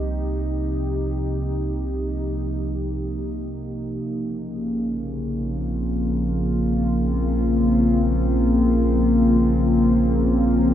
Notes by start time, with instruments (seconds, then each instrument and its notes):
Already playing: sub bass C2, ambient pad C3 F3 A#3 D#4 G4
4.04 sub bass A#1, ambient pad C#3
4.92 ambient pad F4
4.99 ambient pad C4